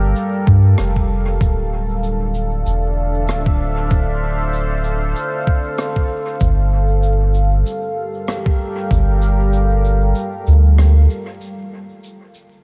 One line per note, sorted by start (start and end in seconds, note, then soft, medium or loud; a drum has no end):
0.00 0.13 G1 loud
0.00 1.41 G3 medium
0.00 3.20 G4 medium
0.00 12.64 A4 medium
0.00 1.41 A#4 medium
0.00 12.64 F5 medium
0.16 shaker medium
0.47 0.75 G2 loud
0.47 kick loud
0.47 shaker soft
0.78 1.38 F1 medium
0.78 cross-stick medium
0.78 shaker medium
0.96 kick medium
1.41 2.63 D1 medium
1.41 8.05 D4 medium
1.41 kick loud
1.41 shaker medium
1.91 6.41 E5 medium
2.03 shaker medium
2.34 shaker soft
2.50 8.43 C5 medium
2.66 3.30 E1 medium
2.66 shaker medium
3.28 3.89 D1 medium
3.28 cross-stick medium
3.28 shaker medium
3.46 kick loud
3.90 5.13 D1 loud
3.90 kick loud
3.90 shaker medium
4.54 shaker medium
4.84 shaker soft
5.16 shaker medium
5.47 kick loud
5.78 cross-stick medium
5.78 shaker medium
5.96 kick medium
6.41 7.63 G1 loud
6.41 11.41 G3 medium
6.41 kick loud
6.41 shaker medium
6.81 11.41 A#4 medium
6.93 12.39 G4 medium
7.03 shaker medium
7.34 shaker soft
7.66 shaker medium
8.28 cross-stick medium
8.28 shaker medium
8.46 kick loud
8.91 10.13 G1 loud
8.91 kick loud
8.91 shaker medium
9.22 shaker soft
9.53 shaker medium
9.85 shaker soft
10.15 shaker medium
10.47 11.07 D2 medium
10.47 shaker soft
10.78 cross-stick medium
10.78 shaker medium
11.10 shaker soft
11.41 12.64 D4 medium
11.41 shaker medium
11.88 12.64 E5 medium
11.95 12.64 C5 medium
12.04 shaker medium
12.34 shaker soft